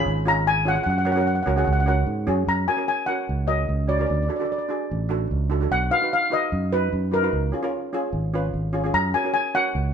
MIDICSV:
0, 0, Header, 1, 4, 480
1, 0, Start_track
1, 0, Key_signature, 6, "major"
1, 0, Tempo, 403769
1, 1034, Time_signature, 4, 2, 24, 8
1, 11812, End_track
2, 0, Start_track
2, 0, Title_t, "Steel pan"
2, 0, Program_c, 0, 114
2, 0, Note_on_c, 0, 83, 108
2, 285, Note_off_c, 0, 83, 0
2, 335, Note_on_c, 0, 82, 95
2, 439, Note_off_c, 0, 82, 0
2, 563, Note_on_c, 0, 80, 92
2, 806, Note_off_c, 0, 80, 0
2, 811, Note_on_c, 0, 78, 85
2, 879, Note_off_c, 0, 78, 0
2, 893, Note_on_c, 0, 78, 60
2, 972, Note_off_c, 0, 78, 0
2, 992, Note_on_c, 0, 78, 65
2, 1056, Note_off_c, 0, 78, 0
2, 1071, Note_on_c, 0, 78, 55
2, 1152, Note_off_c, 0, 78, 0
2, 1166, Note_on_c, 0, 78, 62
2, 1234, Note_off_c, 0, 78, 0
2, 1249, Note_on_c, 0, 78, 53
2, 1317, Note_off_c, 0, 78, 0
2, 1331, Note_on_c, 0, 78, 58
2, 1414, Note_off_c, 0, 78, 0
2, 1437, Note_on_c, 0, 78, 53
2, 1498, Note_off_c, 0, 78, 0
2, 1512, Note_on_c, 0, 78, 60
2, 1593, Note_off_c, 0, 78, 0
2, 1608, Note_on_c, 0, 78, 46
2, 1680, Note_off_c, 0, 78, 0
2, 1695, Note_on_c, 0, 78, 56
2, 1759, Note_off_c, 0, 78, 0
2, 1773, Note_on_c, 0, 78, 48
2, 1857, Note_off_c, 0, 78, 0
2, 1873, Note_on_c, 0, 78, 59
2, 1943, Note_off_c, 0, 78, 0
2, 1957, Note_on_c, 0, 78, 50
2, 2035, Note_off_c, 0, 78, 0
2, 2052, Note_on_c, 0, 78, 57
2, 2125, Note_off_c, 0, 78, 0
2, 2139, Note_on_c, 0, 78, 56
2, 2214, Note_off_c, 0, 78, 0
2, 2237, Note_on_c, 0, 78, 66
2, 2310, Note_off_c, 0, 78, 0
2, 2955, Note_on_c, 0, 82, 85
2, 3062, Note_off_c, 0, 82, 0
2, 3184, Note_on_c, 0, 80, 84
2, 3410, Note_off_c, 0, 80, 0
2, 3426, Note_on_c, 0, 80, 80
2, 3642, Note_on_c, 0, 78, 81
2, 3675, Note_off_c, 0, 80, 0
2, 4101, Note_off_c, 0, 78, 0
2, 4133, Note_on_c, 0, 75, 78
2, 4621, Note_on_c, 0, 74, 64
2, 4636, Note_off_c, 0, 75, 0
2, 4710, Note_off_c, 0, 74, 0
2, 4728, Note_on_c, 0, 74, 47
2, 4807, Note_off_c, 0, 74, 0
2, 4827, Note_on_c, 0, 74, 47
2, 4893, Note_off_c, 0, 74, 0
2, 4907, Note_on_c, 0, 74, 43
2, 4988, Note_off_c, 0, 74, 0
2, 5022, Note_on_c, 0, 74, 44
2, 5087, Note_off_c, 0, 74, 0
2, 5104, Note_on_c, 0, 74, 40
2, 5170, Note_off_c, 0, 74, 0
2, 5184, Note_on_c, 0, 74, 47
2, 5259, Note_off_c, 0, 74, 0
2, 5291, Note_on_c, 0, 74, 40
2, 5354, Note_off_c, 0, 74, 0
2, 5374, Note_on_c, 0, 74, 50
2, 5436, Note_off_c, 0, 74, 0
2, 5450, Note_on_c, 0, 74, 47
2, 5524, Note_off_c, 0, 74, 0
2, 6796, Note_on_c, 0, 78, 96
2, 7018, Note_off_c, 0, 78, 0
2, 7029, Note_on_c, 0, 77, 87
2, 7138, Note_off_c, 0, 77, 0
2, 7290, Note_on_c, 0, 77, 82
2, 7529, Note_off_c, 0, 77, 0
2, 7529, Note_on_c, 0, 75, 84
2, 7995, Note_on_c, 0, 71, 79
2, 8016, Note_off_c, 0, 75, 0
2, 8441, Note_off_c, 0, 71, 0
2, 8483, Note_on_c, 0, 70, 74
2, 9392, Note_off_c, 0, 70, 0
2, 10629, Note_on_c, 0, 82, 94
2, 10868, Note_on_c, 0, 80, 84
2, 10881, Note_off_c, 0, 82, 0
2, 11085, Note_off_c, 0, 80, 0
2, 11099, Note_on_c, 0, 80, 84
2, 11351, Note_on_c, 0, 78, 81
2, 11356, Note_off_c, 0, 80, 0
2, 11802, Note_off_c, 0, 78, 0
2, 11812, End_track
3, 0, Start_track
3, 0, Title_t, "Steel pan"
3, 0, Program_c, 1, 114
3, 0, Note_on_c, 1, 61, 82
3, 0, Note_on_c, 1, 65, 68
3, 0, Note_on_c, 1, 68, 86
3, 172, Note_off_c, 1, 61, 0
3, 175, Note_off_c, 1, 65, 0
3, 182, Note_off_c, 1, 68, 0
3, 301, Note_on_c, 1, 61, 69
3, 311, Note_on_c, 1, 65, 69
3, 319, Note_on_c, 1, 68, 78
3, 598, Note_off_c, 1, 61, 0
3, 602, Note_off_c, 1, 65, 0
3, 607, Note_off_c, 1, 68, 0
3, 772, Note_on_c, 1, 61, 69
3, 778, Note_on_c, 1, 65, 67
3, 790, Note_on_c, 1, 68, 81
3, 1023, Note_off_c, 1, 61, 0
3, 1026, Note_off_c, 1, 65, 0
3, 1032, Note_off_c, 1, 68, 0
3, 1249, Note_on_c, 1, 61, 75
3, 1257, Note_on_c, 1, 66, 68
3, 1267, Note_on_c, 1, 70, 84
3, 1335, Note_off_c, 1, 61, 0
3, 1340, Note_off_c, 1, 66, 0
3, 1344, Note_off_c, 1, 70, 0
3, 1374, Note_on_c, 1, 61, 79
3, 1386, Note_on_c, 1, 66, 70
3, 1394, Note_on_c, 1, 70, 86
3, 1600, Note_off_c, 1, 61, 0
3, 1607, Note_off_c, 1, 66, 0
3, 1610, Note_off_c, 1, 70, 0
3, 1734, Note_on_c, 1, 61, 78
3, 1749, Note_on_c, 1, 66, 67
3, 1751, Note_on_c, 1, 70, 83
3, 1818, Note_off_c, 1, 61, 0
3, 1825, Note_off_c, 1, 66, 0
3, 1826, Note_off_c, 1, 70, 0
3, 1860, Note_on_c, 1, 61, 74
3, 1872, Note_on_c, 1, 66, 68
3, 1882, Note_on_c, 1, 68, 81
3, 2083, Note_off_c, 1, 61, 0
3, 2089, Note_off_c, 1, 66, 0
3, 2094, Note_off_c, 1, 68, 0
3, 2210, Note_on_c, 1, 61, 72
3, 2221, Note_on_c, 1, 66, 66
3, 2231, Note_on_c, 1, 70, 79
3, 2510, Note_off_c, 1, 61, 0
3, 2515, Note_off_c, 1, 66, 0
3, 2520, Note_off_c, 1, 70, 0
3, 2697, Note_on_c, 1, 61, 80
3, 2699, Note_on_c, 1, 66, 77
3, 2712, Note_on_c, 1, 68, 90
3, 2943, Note_off_c, 1, 61, 0
3, 2945, Note_off_c, 1, 66, 0
3, 2951, Note_off_c, 1, 68, 0
3, 3181, Note_on_c, 1, 61, 61
3, 3192, Note_on_c, 1, 66, 58
3, 3197, Note_on_c, 1, 70, 69
3, 3260, Note_off_c, 1, 61, 0
3, 3265, Note_off_c, 1, 66, 0
3, 3268, Note_off_c, 1, 70, 0
3, 3291, Note_on_c, 1, 61, 61
3, 3296, Note_on_c, 1, 66, 56
3, 3305, Note_on_c, 1, 70, 71
3, 3518, Note_off_c, 1, 61, 0
3, 3520, Note_off_c, 1, 66, 0
3, 3525, Note_off_c, 1, 70, 0
3, 3658, Note_on_c, 1, 61, 61
3, 3669, Note_on_c, 1, 66, 58
3, 3673, Note_on_c, 1, 70, 71
3, 3954, Note_off_c, 1, 61, 0
3, 3959, Note_off_c, 1, 66, 0
3, 3961, Note_off_c, 1, 70, 0
3, 4122, Note_on_c, 1, 61, 64
3, 4132, Note_on_c, 1, 66, 56
3, 4139, Note_on_c, 1, 70, 69
3, 4426, Note_off_c, 1, 61, 0
3, 4431, Note_off_c, 1, 66, 0
3, 4434, Note_off_c, 1, 70, 0
3, 4607, Note_on_c, 1, 61, 60
3, 4616, Note_on_c, 1, 66, 58
3, 4624, Note_on_c, 1, 73, 66
3, 4693, Note_off_c, 1, 61, 0
3, 4698, Note_off_c, 1, 66, 0
3, 4702, Note_off_c, 1, 73, 0
3, 4743, Note_on_c, 1, 61, 66
3, 4753, Note_on_c, 1, 66, 61
3, 4767, Note_on_c, 1, 70, 75
3, 4865, Note_off_c, 1, 61, 0
3, 4870, Note_off_c, 1, 66, 0
3, 4876, Note_off_c, 1, 70, 0
3, 5091, Note_on_c, 1, 62, 63
3, 5109, Note_on_c, 1, 66, 59
3, 5110, Note_on_c, 1, 69, 68
3, 5175, Note_off_c, 1, 62, 0
3, 5184, Note_off_c, 1, 66, 0
3, 5185, Note_off_c, 1, 69, 0
3, 5225, Note_on_c, 1, 62, 63
3, 5233, Note_on_c, 1, 66, 59
3, 5246, Note_on_c, 1, 69, 74
3, 5445, Note_off_c, 1, 62, 0
3, 5449, Note_off_c, 1, 66, 0
3, 5456, Note_off_c, 1, 69, 0
3, 5571, Note_on_c, 1, 62, 61
3, 5582, Note_on_c, 1, 66, 58
3, 5591, Note_on_c, 1, 68, 74
3, 5871, Note_off_c, 1, 62, 0
3, 5876, Note_off_c, 1, 66, 0
3, 5881, Note_off_c, 1, 68, 0
3, 6050, Note_on_c, 1, 62, 76
3, 6064, Note_on_c, 1, 66, 68
3, 6073, Note_on_c, 1, 69, 82
3, 6351, Note_off_c, 1, 62, 0
3, 6358, Note_off_c, 1, 66, 0
3, 6362, Note_off_c, 1, 69, 0
3, 6534, Note_on_c, 1, 62, 74
3, 6548, Note_on_c, 1, 66, 66
3, 6558, Note_on_c, 1, 69, 78
3, 6618, Note_off_c, 1, 62, 0
3, 6624, Note_off_c, 1, 66, 0
3, 6629, Note_off_c, 1, 69, 0
3, 6664, Note_on_c, 1, 62, 68
3, 6680, Note_on_c, 1, 66, 61
3, 6692, Note_on_c, 1, 69, 72
3, 6786, Note_off_c, 1, 62, 0
3, 6794, Note_off_c, 1, 66, 0
3, 6800, Note_off_c, 1, 69, 0
3, 7021, Note_on_c, 1, 63, 62
3, 7031, Note_on_c, 1, 66, 57
3, 7040, Note_on_c, 1, 71, 67
3, 7101, Note_off_c, 1, 63, 0
3, 7106, Note_off_c, 1, 66, 0
3, 7110, Note_off_c, 1, 71, 0
3, 7158, Note_on_c, 1, 63, 63
3, 7158, Note_on_c, 1, 66, 61
3, 7177, Note_on_c, 1, 71, 72
3, 7372, Note_off_c, 1, 63, 0
3, 7373, Note_off_c, 1, 66, 0
3, 7382, Note_off_c, 1, 71, 0
3, 7493, Note_on_c, 1, 63, 67
3, 7509, Note_on_c, 1, 66, 61
3, 7512, Note_on_c, 1, 71, 77
3, 7793, Note_off_c, 1, 63, 0
3, 7801, Note_off_c, 1, 66, 0
3, 7803, Note_off_c, 1, 71, 0
3, 7995, Note_on_c, 1, 63, 63
3, 8001, Note_on_c, 1, 66, 59
3, 8011, Note_on_c, 1, 71, 73
3, 8284, Note_off_c, 1, 63, 0
3, 8287, Note_off_c, 1, 66, 0
3, 8292, Note_off_c, 1, 71, 0
3, 8457, Note_on_c, 1, 63, 61
3, 8471, Note_on_c, 1, 66, 57
3, 8481, Note_on_c, 1, 71, 71
3, 8540, Note_off_c, 1, 63, 0
3, 8547, Note_off_c, 1, 66, 0
3, 8552, Note_off_c, 1, 71, 0
3, 8588, Note_on_c, 1, 63, 68
3, 8599, Note_on_c, 1, 66, 60
3, 8607, Note_on_c, 1, 71, 78
3, 8709, Note_off_c, 1, 63, 0
3, 8715, Note_off_c, 1, 66, 0
3, 8719, Note_off_c, 1, 71, 0
3, 8940, Note_on_c, 1, 61, 62
3, 8956, Note_on_c, 1, 65, 61
3, 8963, Note_on_c, 1, 68, 72
3, 9022, Note_off_c, 1, 61, 0
3, 9030, Note_off_c, 1, 65, 0
3, 9033, Note_off_c, 1, 68, 0
3, 9065, Note_on_c, 1, 61, 82
3, 9069, Note_on_c, 1, 65, 70
3, 9083, Note_on_c, 1, 70, 82
3, 9287, Note_off_c, 1, 61, 0
3, 9289, Note_off_c, 1, 65, 0
3, 9296, Note_off_c, 1, 70, 0
3, 9426, Note_on_c, 1, 61, 75
3, 9437, Note_on_c, 1, 65, 69
3, 9444, Note_on_c, 1, 68, 88
3, 9721, Note_off_c, 1, 61, 0
3, 9726, Note_off_c, 1, 65, 0
3, 9730, Note_off_c, 1, 68, 0
3, 9909, Note_on_c, 1, 61, 72
3, 9913, Note_on_c, 1, 65, 66
3, 9930, Note_on_c, 1, 71, 83
3, 10203, Note_off_c, 1, 61, 0
3, 10204, Note_off_c, 1, 65, 0
3, 10213, Note_off_c, 1, 71, 0
3, 10375, Note_on_c, 1, 61, 74
3, 10385, Note_on_c, 1, 65, 65
3, 10394, Note_on_c, 1, 68, 75
3, 10460, Note_off_c, 1, 61, 0
3, 10465, Note_off_c, 1, 65, 0
3, 10470, Note_off_c, 1, 68, 0
3, 10506, Note_on_c, 1, 61, 66
3, 10514, Note_on_c, 1, 65, 60
3, 10531, Note_on_c, 1, 68, 77
3, 10630, Note_off_c, 1, 61, 0
3, 10634, Note_off_c, 1, 65, 0
3, 10642, Note_off_c, 1, 68, 0
3, 10864, Note_on_c, 1, 61, 64
3, 10877, Note_on_c, 1, 66, 61
3, 10885, Note_on_c, 1, 70, 69
3, 10945, Note_off_c, 1, 61, 0
3, 10952, Note_off_c, 1, 66, 0
3, 10956, Note_off_c, 1, 70, 0
3, 10987, Note_on_c, 1, 61, 68
3, 10995, Note_on_c, 1, 66, 60
3, 11007, Note_on_c, 1, 70, 71
3, 11210, Note_off_c, 1, 61, 0
3, 11214, Note_off_c, 1, 66, 0
3, 11220, Note_off_c, 1, 70, 0
3, 11348, Note_on_c, 1, 61, 65
3, 11353, Note_on_c, 1, 66, 62
3, 11368, Note_on_c, 1, 70, 72
3, 11643, Note_off_c, 1, 61, 0
3, 11646, Note_off_c, 1, 66, 0
3, 11653, Note_off_c, 1, 70, 0
3, 11812, End_track
4, 0, Start_track
4, 0, Title_t, "Fingered electric bass"
4, 0, Program_c, 2, 33
4, 75, Note_on_c, 2, 32, 100
4, 908, Note_off_c, 2, 32, 0
4, 1025, Note_on_c, 2, 42, 94
4, 1653, Note_off_c, 2, 42, 0
4, 1744, Note_on_c, 2, 37, 81
4, 1956, Note_off_c, 2, 37, 0
4, 1990, Note_on_c, 2, 37, 99
4, 2407, Note_off_c, 2, 37, 0
4, 2456, Note_on_c, 2, 44, 82
4, 2678, Note_off_c, 2, 44, 0
4, 2704, Note_on_c, 2, 42, 84
4, 2923, Note_off_c, 2, 42, 0
4, 2939, Note_on_c, 2, 42, 78
4, 3152, Note_off_c, 2, 42, 0
4, 3912, Note_on_c, 2, 37, 82
4, 4329, Note_off_c, 2, 37, 0
4, 4382, Note_on_c, 2, 37, 80
4, 4803, Note_off_c, 2, 37, 0
4, 4871, Note_on_c, 2, 38, 83
4, 5080, Note_off_c, 2, 38, 0
4, 5841, Note_on_c, 2, 33, 83
4, 6255, Note_off_c, 2, 33, 0
4, 6311, Note_on_c, 2, 37, 82
4, 6729, Note_off_c, 2, 37, 0
4, 6789, Note_on_c, 2, 35, 85
4, 6999, Note_off_c, 2, 35, 0
4, 7753, Note_on_c, 2, 42, 84
4, 8171, Note_off_c, 2, 42, 0
4, 8233, Note_on_c, 2, 42, 86
4, 8651, Note_off_c, 2, 42, 0
4, 8711, Note_on_c, 2, 37, 81
4, 8922, Note_off_c, 2, 37, 0
4, 9661, Note_on_c, 2, 32, 80
4, 10085, Note_off_c, 2, 32, 0
4, 10147, Note_on_c, 2, 32, 81
4, 10569, Note_off_c, 2, 32, 0
4, 10624, Note_on_c, 2, 42, 85
4, 10839, Note_off_c, 2, 42, 0
4, 11589, Note_on_c, 2, 37, 82
4, 11812, Note_off_c, 2, 37, 0
4, 11812, End_track
0, 0, End_of_file